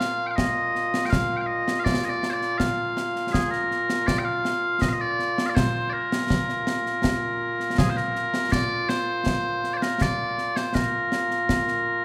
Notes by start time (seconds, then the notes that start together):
Already playing: A#2 A#3 F4 F5
0.01 snare
0.26 F5 G5
0.36 D#5, concert bass drum, snare
0.75 snare
0.94 snare
1.05 G5
1.10 F5, concert bass drum, snare
1.36 G5
1.41 F5
1.47 D#5
1.68 snare
1.80 F5
1.84 D5, concert bass drum, snare
2.04 D#5, snare
2.09 D5
2.23 snare
2.30 C5 D5
2.41 snare
2.58 F5, concert bass drum, snare
2.97 snare
3.16 snare
3.32 G#4, concert bass drum, snare
3.51 A#4, snare
3.71 snare
3.90 snare
4.07 D5, concert bass drum, snare
4.18 G5
4.24 F5
4.45 snare
4.82 D#5, concert bass drum, snare
4.89 F5
4.93 D#5
5.00 D5
5.19 snare
5.38 snare
5.46 D5 F5
5.55 C5, concert bass drum, snare
5.90 A#4 D5
6.12 snare
6.30 concert bass drum, snare
6.49 snare
6.67 snare
6.86 snare
7.04 concert bass drum, snare
7.60 snare
7.78 G#4, concert bass drum, snare
7.90 C5
7.97 A#4, snare
8.16 snare
8.34 snare
8.52 D5, concert bass drum, snare
8.89 C5, snare
9.26 concert bass drum, snare
9.64 snare
9.74 C5 D5
9.82 A#4, snare
10.01 D5, concert bass drum, snare
10.38 snare
10.56 C5, snare
10.67 C5
10.74 A#4, concert bass drum, snare
11.12 snare
11.31 snare
11.49 concert bass drum, snare
11.68 snare